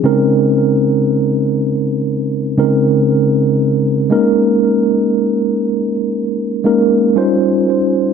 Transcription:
X:1
M:4/4
L:1/8
Q:"Swing 16ths" 1/4=59
K:Bbdor
V:1 name="Tine electric piano"
[D,A,CDEB]3 z2 [D,A,CDEB]2 z | [A,B,DEB]3 z2 [A,B,DEB] [G,DEFc]2 |]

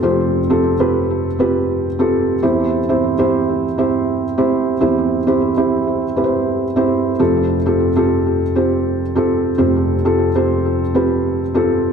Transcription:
X:1
M:4/4
L:1/16
Q:"Swing 16ths" 1/4=100
K:Flyd
V:1 name="Felt piano"
[CFGc]2 z [CFGA]2 [CFGB]3 z [CFGB]3 z [CFGA]2 z | [CEGc]2 z [CEGc]2 [CEGc]3 z [CEGc]3 z [CEGc]2 z | [CEGc]2 z [CEGc]2 [CEGc]3 z [CEGBc]3 z [CEGc]2 z | [CFGA]2 z [CFGA]2 [CFGA]3 z [CFGc]3 z [CFGA]2 z |
[CFGc]2 z [CFGA]2 [CFGc]3 z [CFGB]3 z [CFGA]2 z |]
V:2 name="Felt piano" clef=bass
[F,,,F,,]16 | [E,,E,]16 | [E,,E,]16 | [F,,,F,,]16 |
[F,,,F,,]16 |]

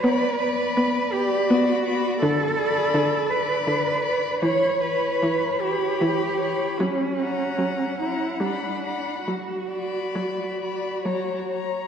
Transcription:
X:1
M:3/4
L:1/8
Q:1/4=76
K:Bm
V:1 name="Violin"
b b2 b2 b | z b2 b2 b | b b2 b2 b | z ^a2 a b b |
z b2 b ^a a |]
V:2 name="Violin"
d d2 d2 d | z d2 d2 d | c c2 c2 c | z f2 f f f |
z d2 d c c |]
V:3 name="Cello"
B3 G F2 | A3 B3 | c B2 G3 | C3 E D2 |
F4- F z |]
V:4 name="Viola" clef=bass
B,2 B,2 B,2 | D,2 D,2 D,2 | E,2 E,2 E,2 | F,2 F,2 G,2 |
F,2 F,2 F,2 |]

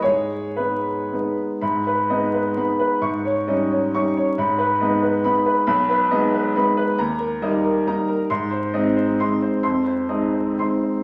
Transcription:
X:1
M:3/4
L:1/8
Q:1/4=133
K:G#m
V:1 name="Grand piano"
[Gc]2 [GB]3 z | b B d B b B | c' c d c c' c | b B d B b B |
b B d B b B | [K:Fdor] b B e B b B | c' c e c c' c | c' c e c c' c |]
V:2 name="Grand piano"
G,,2 [G,B,D]2 [G,B,D]2 | G,,2 [G,B,D]2 [G,B,D]2 | G,,2 [=G,CD]2 [G,CD]2 | G,,2 [G,B,D]2 [G,B,D]2 |
B,,,2 [G,B,D]2 [G,B,D]2 | [K:Fdor] E,,2 [G,B,E]2 [G,B,E]2 | A,,2 [A,CE]2 [A,CE]2 | F,,2 [A,CE]2 [A,CE]2 |]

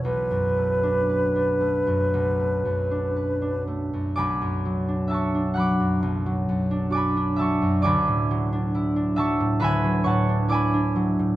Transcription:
X:1
M:4/4
L:1/16
Q:1/4=66
K:Bdor
V:1 name="Flute"
B12- B2 z2 | z16 | z16 |]
V:2 name="Harp"
z16 | [dgbd']4 [eac'e']2 [fbd'f']6 [dgbd']2 [eac'e']2 | [dgbd']6 [eac'e']2 [Begb]2 [cfac']2 [dgbd']4 |]
V:3 name="Harp" clef=bass
[B,,,B,B] F,, A, D B D A, F,, B,,, A, F,, D B D A, F,, | B,,, F,, F, D F D F, F,, B,,, F, F,, D F D F, F,, | D,, A,, F, D E D F, A,, D,, F, A,, D E D F, A,, |]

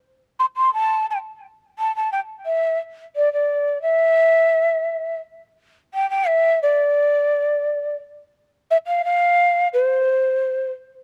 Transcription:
X:1
M:4/4
L:1/16
Q:1/4=87
K:Ephr
V:1 name="Quena"
z2 c' c' a2 g2 z2 a a g2 e2 | z2 d d3 e8 z2 | z2 g g e2 d8 z2 | z2 e f f4 c6 z2 |]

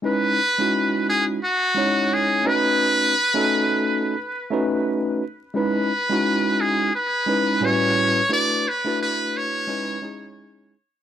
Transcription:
X:1
M:4/4
L:1/16
Q:"Swing 16ths" 1/4=87
K:C#m
V:1 name="Muted trumpet"
B6 G2 F4 G2 B2- | B8- B2 z6 | B6 G2 B4 c4 | =d2 B2 B2 c6 z4 |]
V:2 name="Tine electric piano"
[G,CDEB]2 z [G,CDEF]4- [G,CDEF] z2 [G,CDEc]4 [A,CDFB]2- | [A,CDFB]2 z [A,CDFA]4- [A,CDFA] z2 [A,CDFB]4 z2 | [G,CDEB]2 z [G,CDEF]4- [G,CDEF] z2 [G,CDEB]2 [A,,=G,CEFB]3 z | [A,=DEFB]2 z [A,DEFB]4- [A,DEFB] [G,C^DEB]2 [G,CDEG]4 z2 |]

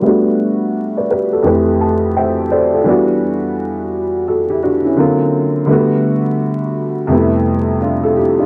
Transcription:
X:1
M:4/4
L:1/16
Q:"Swing 16ths" 1/4=85
K:Glyd
V:1 name="Upright piano"
z4 z [Bd] [GB] [FA]2 z a2 [=ceg]2 [Acd] [=FA]- | [=FA] z6 z [^FA] [EG] [DF] [CE]2 z3 | z12 [D=F] [FA] [EG] [DF] |]
V:2 name="Upright piano"
[G,A,B,DF]8 [=F,,E,A,=CGB]8 | [E,G,B,DF]12 [D,F,^A,=C^E]4 | [D,G,A,B,F]8 [=F,,=C,G,A,B,E]8 |]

